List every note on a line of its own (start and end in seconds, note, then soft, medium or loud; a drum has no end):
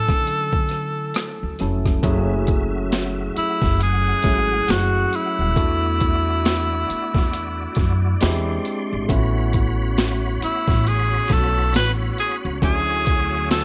0.00 1.55 F#3 medium
0.00 1.55 A3 soft
0.00 1.56 C#4 soft
0.00 1.56 E4 soft
0.00 1.60 A4 loud
0.00 1.60 G#5 medium
0.09 1.11 D3 medium
0.09 kick medium
0.09 cross-stick soft
0.27 closed hi-hat medium
0.53 kick medium
0.69 cross-stick soft
0.69 closed hi-hat medium
1.14 cross-stick loud
1.14 closed hi-hat medium
1.43 1.56 D2 medium
1.59 1.95 F1 medium
1.59 2.01 F#3 medium
1.59 2.02 A3 medium
1.59 2.03 C#4 medium
1.59 2.04 E4 medium
1.59 2.04 A4 medium
1.59 cross-stick soft
1.59 closed hi-hat medium
1.86 kick medium
1.86 cross-stick soft
2.03 3.32 F#1 loud
2.03 4.20 F#3 medium
2.03 4.20 A3 medium
2.03 4.20 C#4 medium
2.03 4.21 E4 medium
2.03 8.17 F#4 medium
2.03 4.21 G#4 medium
2.03 3.78 E5 medium
2.03 kick loud
2.03 closed hi-hat medium
2.47 kick loud
2.47 closed hi-hat medium
2.92 snare loud
2.92 closed hi-hat medium
3.36 3.78 E4 loud
3.36 muted upright bass stroke soft
3.36 closed hi-hat medium
3.62 4.11 F#1 loud
3.62 kick loud
3.62 snare soft
3.79 4.72 G#4 loud
3.79 5.54 F#5 medium
3.79 closed hi-hat medium
4.22 4.59 G#1 loud
4.22 5.56 F#3 soft
4.22 5.54 A3 soft
4.22 5.56 C#4 soft
4.22 5.56 E4 soft
4.22 5.57 G#4 medium
4.22 kick medium
4.22 snare soft
4.22 closed hi-hat medium
4.68 5.03 F#1 medium
4.68 5.17 F#4 loud
4.68 snare loud
4.68 closed hi-hat medium
5.13 8.67 E4 medium
5.13 closed hi-hat medium
5.39 5.53 D#1 medium
5.55 6.85 E2 loud
5.55 8.17 A3 medium
5.55 8.17 B3 medium
5.55 8.17 D4 medium
5.55 8.18 E4 medium
5.55 8.18 F#4 medium
5.55 9.06 D5 medium
5.55 kick loud
5.55 closed hi-hat medium
6.00 kick medium
6.00 closed hi-hat medium
6.45 snare loud
6.45 closed hi-hat medium
6.90 muted upright bass stroke soft
6.90 closed hi-hat medium
7.15 7.64 E2 medium
7.15 kick medium
7.15 snare soft
7.33 closed hi-hat medium
7.75 8.12 F#2 loud
7.75 kick loud
7.75 snare soft
7.75 closed hi-hat medium
8.21 8.57 E2 loud
8.21 9.09 G#3 medium
8.21 9.10 C4 medium
8.21 9.10 D4 medium
8.21 9.10 E4 medium
8.21 9.10 G4 medium
8.21 9.09 C6 medium
8.21 snare loud
8.21 closed hi-hat medium
8.65 closed hi-hat medium
8.92 9.06 G#1 medium
9.08 10.38 A1 loud
9.08 12.58 A3 medium
9.08 12.58 B3 medium
9.08 12.59 C#4 medium
9.08 12.59 E4 medium
9.08 9.18 F4 medium
9.08 12.59 F#4 medium
9.08 13.64 C#5 medium
9.08 12.59 B5 medium
9.08 kick loud
9.08 closed hi-hat medium
9.18 12.63 F#4 medium
9.53 kick medium
9.53 closed hi-hat medium
9.98 snare loud
9.98 closed hi-hat medium
10.42 10.90 E4 loud
10.42 muted upright bass stroke soft
10.42 closed hi-hat medium
10.68 11.17 A1 loud
10.68 kick loud
10.68 snare soft
10.87 11.34 G#4 medium
10.87 closed hi-hat medium
11.28 11.75 B1 loud
11.28 kick medium
11.28 snare soft
11.28 closed hi-hat medium
11.32 11.75 A4 loud
11.74 12.09 A1 medium
11.74 11.92 B4 loud
11.74 snare loud
11.74 closed hi-hat medium
12.18 12.36 G#4 medium
12.18 closed hi-hat medium
12.45 12.59 C#2 loud
12.61 13.64 D2 loud
12.61 13.64 F#3 medium
12.61 13.64 A3 medium
12.61 13.64 C#4 medium
12.61 13.64 E4 medium
12.61 13.64 F#4 medium
12.61 13.47 G#4 loud
12.61 13.64 E5 medium
12.61 13.64 G#5 medium
12.61 kick loud
12.61 closed hi-hat medium
13.06 kick loud
13.06 closed hi-hat medium
13.51 13.64 A4 medium
13.51 snare loud
13.51 closed hi-hat medium